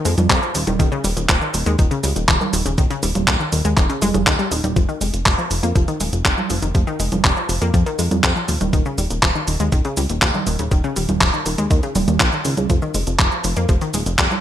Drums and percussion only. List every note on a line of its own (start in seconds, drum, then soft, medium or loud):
0.05 open hi-hat loud
0.05 cabasa medium
0.18 closed hi-hat medium
0.18 high conga medium
0.18 cabasa soft
0.30 kick loud
0.30 clap loud
0.30 closed hi-hat medium
0.30 cabasa soft
0.43 cabasa soft
0.55 open hi-hat loud
0.55 cabasa medium
0.67 closed hi-hat medium
0.67 high conga medium
0.67 cabasa soft
0.80 kick loud
0.80 closed hi-hat medium
0.80 cabasa soft
0.92 cabasa soft
1.04 open hi-hat loud
1.04 cabasa medium
1.17 closed hi-hat medium
1.17 cabasa soft
1.29 kick loud
1.29 clap loud
1.29 closed hi-hat medium
1.29 cabasa soft
1.42 cabasa soft
1.54 open hi-hat loud
1.54 cabasa medium
1.66 closed hi-hat medium
1.66 cabasa soft
1.79 kick loud
1.79 closed hi-hat medium
1.79 cabasa soft
1.91 closed hi-hat soft
1.91 cabasa soft
2.04 open hi-hat loud
2.04 cabasa medium
2.16 closed hi-hat medium
2.16 cabasa soft
2.28 kick loud
2.28 clap loud
2.28 closed hi-hat medium
2.28 cabasa soft
2.41 high conga medium
2.41 cabasa soft
2.53 open hi-hat loud
2.53 cabasa medium
2.66 closed hi-hat medium
2.66 cabasa soft
2.78 kick loud
2.78 closed hi-hat medium
2.78 cabasa soft
2.90 closed hi-hat soft
2.90 cabasa soft
3.03 open hi-hat loud
3.03 cabasa medium
3.15 closed hi-hat medium
3.15 high conga medium
3.15 cabasa soft
3.28 kick loud
3.28 clap loud
3.28 closed hi-hat medium
3.28 cabasa soft
3.40 cabasa soft
3.52 open hi-hat loud
3.52 cabasa medium
3.65 closed hi-hat medium
3.65 cabasa soft
3.77 kick loud
3.77 clap medium
3.77 closed hi-hat medium
3.77 cabasa soft
3.90 closed hi-hat soft
3.90 cabasa soft
4.02 open hi-hat loud
4.02 high conga medium
4.02 cabasa medium
4.14 closed hi-hat medium
4.14 high conga medium
4.14 cabasa soft
4.27 kick loud
4.27 clap loud
4.27 closed hi-hat medium
4.27 cabasa soft
4.39 closed hi-hat soft
4.39 cabasa soft
4.52 open hi-hat loud
4.52 cabasa medium
4.64 closed hi-hat medium
4.64 high conga medium
4.64 cabasa soft
4.76 kick loud
4.76 closed hi-hat medium
4.76 cabasa soft
4.89 cabasa soft
5.01 open hi-hat loud
5.01 cabasa medium
5.14 closed hi-hat medium
5.14 cabasa soft
5.26 kick loud
5.26 clap loud
5.26 closed hi-hat medium
5.26 cabasa soft
5.38 cabasa soft
5.51 open hi-hat loud
5.51 cabasa medium
5.63 closed hi-hat soft
5.63 cabasa soft
5.76 kick loud
5.76 closed hi-hat medium
5.76 cabasa soft
5.88 closed hi-hat soft
5.88 cabasa soft
6.00 open hi-hat loud
6.00 cabasa medium
6.13 closed hi-hat medium
6.13 cabasa soft
6.25 kick loud
6.25 clap loud
6.25 closed hi-hat medium
6.25 cabasa soft
6.38 high conga medium
6.38 cabasa soft
6.50 open hi-hat loud
6.50 cabasa medium
6.62 closed hi-hat medium
6.62 cabasa soft
6.75 kick loud
6.75 closed hi-hat medium
6.75 cabasa soft
6.87 cabasa soft
7.00 open hi-hat loud
7.00 cabasa medium
7.12 closed hi-hat medium
7.12 high conga medium
7.12 cabasa soft
7.24 kick loud
7.24 clap loud
7.24 closed hi-hat medium
7.24 cabasa soft
7.37 cabasa soft
7.49 open hi-hat loud
7.49 cabasa medium
7.62 closed hi-hat soft
7.62 cabasa soft
7.74 kick loud
7.74 closed hi-hat medium
7.74 cabasa soft
7.87 closed hi-hat soft
7.87 cabasa soft
7.99 open hi-hat loud
7.99 cabasa medium
8.11 closed hi-hat medium
8.11 high conga medium
8.11 cabasa soft
8.23 kick loud
8.23 clap loud
8.23 closed hi-hat medium
8.23 cabasa soft
8.36 cabasa soft
8.48 open hi-hat medium
8.48 cabasa medium
8.61 closed hi-hat medium
8.61 high conga medium
8.61 cabasa soft
8.73 kick loud
8.73 closed hi-hat medium
8.73 cabasa soft
8.86 cabasa soft
8.98 open hi-hat medium
8.98 cabasa medium
9.10 closed hi-hat medium
9.10 cabasa soft
9.23 kick loud
9.23 clap loud
9.23 closed hi-hat medium
9.23 cabasa soft
9.35 cabasa soft
9.48 open hi-hat loud
9.48 cabasa medium
9.60 closed hi-hat medium
9.60 cabasa soft
9.72 kick loud
9.72 closed hi-hat medium
9.72 cabasa soft
9.85 closed hi-hat soft
9.85 cabasa soft
9.97 open hi-hat loud
9.97 cabasa medium
10.09 closed hi-hat medium
10.09 cabasa soft
10.22 kick loud
10.22 clap loud
10.22 closed hi-hat medium
10.22 cabasa soft
10.34 high conga medium
10.34 cabasa soft
10.47 open hi-hat loud
10.47 cabasa medium
10.59 closed hi-hat medium
10.59 cabasa soft
10.71 kick loud
10.71 closed hi-hat medium
10.71 cabasa soft
10.84 cabasa soft
10.96 open hi-hat loud
10.96 cabasa medium
11.09 closed hi-hat medium
11.09 high conga medium
11.09 cabasa soft
11.21 kick loud
11.21 clap loud
11.21 closed hi-hat medium
11.21 cabasa soft
11.34 cabasa soft
11.46 open hi-hat loud
11.46 cabasa medium
11.58 closed hi-hat soft
11.58 cabasa soft
11.71 kick loud
11.71 closed hi-hat medium
11.71 cabasa soft
11.83 closed hi-hat soft
11.83 cabasa soft
11.95 open hi-hat loud
11.95 high conga medium
11.95 cabasa medium
12.08 closed hi-hat soft
12.08 high conga medium
12.08 cabasa soft
12.20 kick loud
12.20 clap loud
12.20 closed hi-hat medium
12.20 cabasa soft
12.33 cabasa soft
12.45 open hi-hat loud
12.45 cabasa medium
12.57 closed hi-hat soft
12.57 high conga medium
12.57 cabasa soft
12.70 kick loud
12.70 closed hi-hat medium
12.70 cabasa soft
12.82 cabasa soft
12.94 open hi-hat loud
12.94 cabasa medium
13.07 closed hi-hat medium
13.07 cabasa soft
13.19 kick loud
13.19 clap loud
13.19 closed hi-hat medium
13.19 cabasa soft
13.32 cabasa soft
13.44 open hi-hat loud
13.44 cabasa medium
13.57 closed hi-hat medium
13.57 cabasa soft
13.69 kick loud
13.69 closed hi-hat medium
13.69 cabasa soft
13.81 closed hi-hat soft
13.81 cabasa soft
13.94 open hi-hat loud
13.94 cabasa medium
14.06 closed hi-hat medium
14.06 cabasa soft
14.18 kick loud
14.18 clap loud
14.18 closed hi-hat medium
14.18 cabasa soft
14.31 high conga medium
14.31 cabasa soft